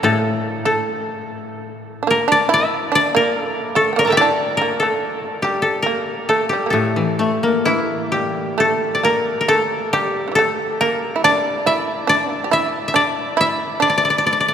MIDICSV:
0, 0, Header, 1, 4, 480
1, 0, Start_track
1, 0, Tempo, 803213
1, 983, Time_signature, 4, 2, 24, 8
1, 983, Tempo, 840336
1, 3383, Tempo, 887574
1, 3863, Tempo, 927357
1, 4823, Tempo, 891530
1, 5783, Tempo, 853485
1, 8127, End_track
2, 0, Start_track
2, 0, Title_t, "Koto"
2, 0, Program_c, 0, 107
2, 0, Note_on_c, 0, 70, 73
2, 0, Note_on_c, 0, 74, 61
2, 25, Note_on_c, 0, 69, 71
2, 60, Note_off_c, 0, 70, 0
2, 161, Note_off_c, 0, 74, 0
2, 390, Note_off_c, 0, 69, 0
2, 392, Note_on_c, 0, 69, 61
2, 1246, Note_on_c, 0, 70, 78
2, 1280, Note_off_c, 0, 69, 0
2, 1367, Note_on_c, 0, 74, 82
2, 1492, Note_on_c, 0, 76, 91
2, 1728, Note_off_c, 0, 74, 0
2, 1730, Note_on_c, 0, 74, 91
2, 1848, Note_off_c, 0, 70, 0
2, 1851, Note_on_c, 0, 70, 82
2, 1971, Note_off_c, 0, 70, 0
2, 1971, Note_on_c, 0, 69, 82
2, 2192, Note_off_c, 0, 69, 0
2, 2192, Note_on_c, 0, 69, 79
2, 2322, Note_on_c, 0, 70, 74
2, 2345, Note_off_c, 0, 76, 0
2, 2355, Note_on_c, 0, 82, 33
2, 2356, Note_off_c, 0, 69, 0
2, 2370, Note_on_c, 0, 81, 37
2, 2387, Note_on_c, 0, 79, 43
2, 2398, Note_on_c, 0, 76, 53
2, 2424, Note_off_c, 0, 74, 0
2, 2426, Note_on_c, 0, 74, 89
2, 2652, Note_off_c, 0, 70, 0
2, 2655, Note_on_c, 0, 70, 68
2, 2689, Note_off_c, 0, 81, 0
2, 2783, Note_on_c, 0, 69, 67
2, 2818, Note_off_c, 0, 70, 0
2, 2818, Note_off_c, 0, 82, 0
2, 3141, Note_on_c, 0, 67, 63
2, 3155, Note_off_c, 0, 79, 0
2, 3250, Note_off_c, 0, 76, 0
2, 3252, Note_off_c, 0, 69, 0
2, 3254, Note_on_c, 0, 69, 61
2, 3340, Note_off_c, 0, 74, 0
2, 3370, Note_on_c, 0, 70, 65
2, 3404, Note_off_c, 0, 69, 0
2, 3622, Note_on_c, 0, 69, 69
2, 3654, Note_off_c, 0, 70, 0
2, 3730, Note_off_c, 0, 67, 0
2, 3732, Note_on_c, 0, 67, 57
2, 3844, Note_off_c, 0, 69, 0
2, 3846, Note_on_c, 0, 69, 52
2, 4339, Note_on_c, 0, 64, 68
2, 4577, Note_off_c, 0, 67, 0
2, 4579, Note_on_c, 0, 67, 59
2, 4827, Note_off_c, 0, 69, 0
2, 4829, Note_on_c, 0, 69, 75
2, 5016, Note_on_c, 0, 74, 58
2, 5069, Note_on_c, 0, 70, 76
2, 5101, Note_off_c, 0, 69, 0
2, 5261, Note_off_c, 0, 70, 0
2, 5263, Note_on_c, 0, 70, 52
2, 5306, Note_on_c, 0, 69, 82
2, 5338, Note_off_c, 0, 70, 0
2, 5539, Note_off_c, 0, 64, 0
2, 5542, Note_off_c, 0, 67, 0
2, 5545, Note_on_c, 0, 67, 75
2, 5770, Note_off_c, 0, 69, 0
2, 5773, Note_on_c, 0, 69, 77
2, 5882, Note_off_c, 0, 74, 0
2, 6028, Note_on_c, 0, 70, 78
2, 6061, Note_off_c, 0, 69, 0
2, 6273, Note_on_c, 0, 74, 95
2, 6512, Note_on_c, 0, 76, 84
2, 6681, Note_off_c, 0, 67, 0
2, 6749, Note_off_c, 0, 74, 0
2, 6751, Note_on_c, 0, 74, 86
2, 6995, Note_off_c, 0, 76, 0
2, 6997, Note_on_c, 0, 76, 83
2, 7062, Note_off_c, 0, 70, 0
2, 7191, Note_off_c, 0, 76, 0
2, 7193, Note_on_c, 0, 76, 66
2, 7234, Note_off_c, 0, 74, 0
2, 7236, Note_on_c, 0, 74, 94
2, 7487, Note_off_c, 0, 76, 0
2, 7489, Note_on_c, 0, 76, 92
2, 7721, Note_off_c, 0, 74, 0
2, 7723, Note_on_c, 0, 74, 88
2, 7763, Note_off_c, 0, 74, 0
2, 7765, Note_on_c, 0, 74, 62
2, 7808, Note_off_c, 0, 74, 0
2, 7810, Note_on_c, 0, 74, 73
2, 7848, Note_off_c, 0, 74, 0
2, 7851, Note_on_c, 0, 74, 57
2, 7878, Note_off_c, 0, 74, 0
2, 7881, Note_on_c, 0, 74, 68
2, 7924, Note_off_c, 0, 74, 0
2, 7926, Note_on_c, 0, 74, 58
2, 7970, Note_off_c, 0, 74, 0
2, 7973, Note_on_c, 0, 74, 71
2, 8005, Note_off_c, 0, 74, 0
2, 8007, Note_on_c, 0, 74, 56
2, 8049, Note_off_c, 0, 74, 0
2, 8051, Note_on_c, 0, 74, 68
2, 8093, Note_off_c, 0, 74, 0
2, 8096, Note_on_c, 0, 74, 59
2, 8127, Note_off_c, 0, 74, 0
2, 8127, Note_off_c, 0, 76, 0
2, 8127, End_track
3, 0, Start_track
3, 0, Title_t, "Shamisen"
3, 0, Program_c, 1, 106
3, 21, Note_on_c, 1, 55, 62
3, 122, Note_off_c, 1, 55, 0
3, 122, Note_on_c, 1, 57, 62
3, 359, Note_off_c, 1, 57, 0
3, 391, Note_on_c, 1, 57, 55
3, 719, Note_off_c, 1, 57, 0
3, 1201, Note_on_c, 1, 62, 51
3, 1226, Note_off_c, 1, 62, 0
3, 1227, Note_on_c, 1, 58, 65
3, 1337, Note_off_c, 1, 58, 0
3, 1344, Note_on_c, 1, 62, 76
3, 1457, Note_off_c, 1, 62, 0
3, 1465, Note_on_c, 1, 64, 82
3, 1690, Note_off_c, 1, 64, 0
3, 1709, Note_on_c, 1, 62, 73
3, 1819, Note_off_c, 1, 62, 0
3, 1841, Note_on_c, 1, 58, 69
3, 2052, Note_off_c, 1, 58, 0
3, 2187, Note_on_c, 1, 57, 71
3, 2287, Note_on_c, 1, 79, 33
3, 2294, Note_off_c, 1, 57, 0
3, 2307, Note_on_c, 1, 58, 63
3, 2315, Note_off_c, 1, 79, 0
3, 2318, Note_on_c, 1, 76, 34
3, 2331, Note_off_c, 1, 76, 0
3, 2333, Note_on_c, 1, 74, 37
3, 2358, Note_off_c, 1, 74, 0
3, 2360, Note_on_c, 1, 70, 44
3, 2377, Note_on_c, 1, 69, 45
3, 2399, Note_off_c, 1, 70, 0
3, 2402, Note_on_c, 1, 67, 48
3, 2414, Note_off_c, 1, 58, 0
3, 2424, Note_off_c, 1, 69, 0
3, 2427, Note_on_c, 1, 64, 50
3, 2448, Note_off_c, 1, 67, 0
3, 2450, Note_on_c, 1, 62, 72
3, 2490, Note_off_c, 1, 64, 0
3, 2658, Note_off_c, 1, 62, 0
3, 2680, Note_on_c, 1, 58, 58
3, 2781, Note_off_c, 1, 58, 0
3, 2801, Note_on_c, 1, 57, 55
3, 3012, Note_off_c, 1, 57, 0
3, 3154, Note_on_c, 1, 55, 50
3, 3374, Note_off_c, 1, 55, 0
3, 3392, Note_on_c, 1, 58, 59
3, 3608, Note_off_c, 1, 58, 0
3, 3626, Note_on_c, 1, 57, 59
3, 3735, Note_off_c, 1, 57, 0
3, 3753, Note_on_c, 1, 55, 53
3, 3822, Note_off_c, 1, 55, 0
3, 3824, Note_on_c, 1, 58, 37
3, 3862, Note_off_c, 1, 58, 0
3, 3865, Note_on_c, 1, 57, 46
3, 4343, Note_on_c, 1, 52, 57
3, 4569, Note_off_c, 1, 57, 0
3, 4570, Note_off_c, 1, 52, 0
3, 4590, Note_on_c, 1, 55, 49
3, 4807, Note_off_c, 1, 55, 0
3, 4817, Note_on_c, 1, 57, 70
3, 5043, Note_off_c, 1, 57, 0
3, 5063, Note_on_c, 1, 58, 60
3, 5289, Note_off_c, 1, 58, 0
3, 5305, Note_on_c, 1, 57, 74
3, 5530, Note_off_c, 1, 57, 0
3, 5548, Note_on_c, 1, 55, 70
3, 5731, Note_on_c, 1, 50, 33
3, 5750, Note_off_c, 1, 50, 0
3, 5753, Note_on_c, 1, 52, 33
3, 5766, Note_off_c, 1, 55, 0
3, 5778, Note_off_c, 1, 52, 0
3, 5781, Note_on_c, 1, 55, 36
3, 5791, Note_on_c, 1, 57, 70
3, 5850, Note_off_c, 1, 55, 0
3, 6013, Note_off_c, 1, 57, 0
3, 6028, Note_on_c, 1, 58, 69
3, 6216, Note_off_c, 1, 58, 0
3, 6224, Note_on_c, 1, 64, 57
3, 6266, Note_off_c, 1, 64, 0
3, 6272, Note_on_c, 1, 62, 75
3, 6495, Note_off_c, 1, 62, 0
3, 6510, Note_on_c, 1, 64, 76
3, 6732, Note_off_c, 1, 64, 0
3, 6740, Note_on_c, 1, 62, 81
3, 6869, Note_off_c, 1, 62, 0
3, 6869, Note_on_c, 1, 58, 81
3, 6932, Note_off_c, 1, 58, 0
3, 6948, Note_on_c, 1, 67, 54
3, 6986, Note_off_c, 1, 67, 0
3, 6988, Note_on_c, 1, 64, 77
3, 7216, Note_off_c, 1, 64, 0
3, 7227, Note_on_c, 1, 62, 80
3, 7457, Note_off_c, 1, 62, 0
3, 7469, Note_on_c, 1, 64, 81
3, 7694, Note_off_c, 1, 64, 0
3, 7710, Note_on_c, 1, 62, 79
3, 8127, Note_off_c, 1, 62, 0
3, 8127, End_track
4, 0, Start_track
4, 0, Title_t, "Koto"
4, 0, Program_c, 2, 107
4, 19, Note_on_c, 2, 45, 56
4, 1462, Note_off_c, 2, 45, 0
4, 3859, Note_on_c, 2, 45, 47
4, 3981, Note_on_c, 2, 52, 32
4, 4099, Note_on_c, 2, 57, 37
4, 4224, Note_on_c, 2, 58, 38
4, 4350, Note_on_c, 2, 64, 34
4, 4943, Note_off_c, 2, 52, 0
4, 5063, Note_off_c, 2, 57, 0
4, 5186, Note_off_c, 2, 58, 0
4, 5305, Note_off_c, 2, 45, 0
4, 5310, Note_off_c, 2, 64, 0
4, 8127, End_track
0, 0, End_of_file